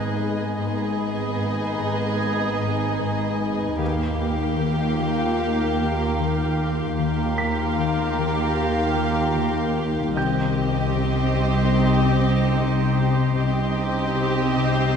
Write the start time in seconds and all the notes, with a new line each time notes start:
Already playing: G#1 G#2 G#3 B3 D#4 G#4 B4 D#5 G#5 A#5 A#6
0.19 G#3
0.58 G#1 G#2 B3 D#4 G#4 B4 D#5 G#5
0.98 G#3
1.38 G#2
1.78 G#2
2.19 G#3
2.59 G#2
2.99 G#2
3.39 G#3
3.78 D#2 D#3 A#3 F4 G4 A#4 F5 G5
4.19 D#4
4.59 D#3
4.99 D#3
5.39 D#4
5.79 D#3
6.20 D#3
6.58 D#4
6.97 D#2 D#3 A#3 F4 G4 A#4 F5 G5
7.38 D#4 B6
7.79 D#3
8.18 D#3
8.57 D#4
8.97 D#3
9.37 D#3
9.76 D#4
10.15 C2 C3 C4 D#4 G4 C5 D#5 G5 G6
10.56 C4
10.95 C3
11.35 C3
11.75 C4
12.16 C3
12.55 C3
12.96 C4
13.36 C2 C3 C4 D#4 G4 C5 D#5 G5
13.76 C4
14.16 C3
14.56 C3